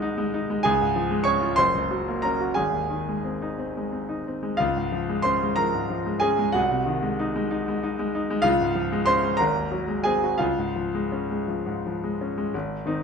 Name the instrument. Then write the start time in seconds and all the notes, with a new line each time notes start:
grand piano
Already playing: C2 C3 D#3 G#3 D#4 F#4 F#5
0.02 D#4
0.18 G#3
0.34 D#4
0.50 G#3
0.63 C#2 G#4 G#5
0.81 G#2
0.96 F3
1.11 G#3
1.24 C#4 C#5 C#6
1.41 F4
1.56 F#1 C5 C6
1.75 C#2
1.91 F#3
2.08 A#3
2.22 C#4 A#4 A#5
2.41 F#4
2.54 G#1 G#4 G#5
2.73 D#2
2.90 D#3
3.09 G#3
3.24 C4
3.42 D#4
3.59 C4
3.77 G#3
3.92 C4
4.09 D#4
4.27 C4
4.43 G#3
4.57 C#2 F4 F5
4.76 G#2
4.92 F3
5.09 G#3
5.22 C#4 C5 C6
5.43 G#3
5.56 F3 A#4 A#5
5.74 G#2
5.90 F3
6.06 G#3
6.20 C#4 G#4 G#5
6.39 G#3
6.52 C2 F#4 F#5
6.72 C3
6.86 D#3
7.02 G#3
7.19 D#4
7.35 G#3
7.51 D#4
7.68 G#3
7.83 D#4
7.99 G#3
8.15 D#4
8.30 G#3
8.42 C#2 F4 F5
8.61 G#2
8.75 F3
8.92 G#3
9.06 C#4 C5 C6
9.23 G#3
9.37 G#1 A#4 A#5
9.54 D#2
9.72 F#3
9.88 G#3
10.04 C4 G#4 G#5
10.24 F#4
10.38 C#2 F4 F5
10.58 G#2
10.76 F3
10.95 G#3
11.12 C#4
11.31 G#3
11.48 F3
11.66 G#2
11.87 F3
12.04 G#3
12.21 C#4
12.38 G#3
12.54 G#1
12.86 D#3 C4 D#4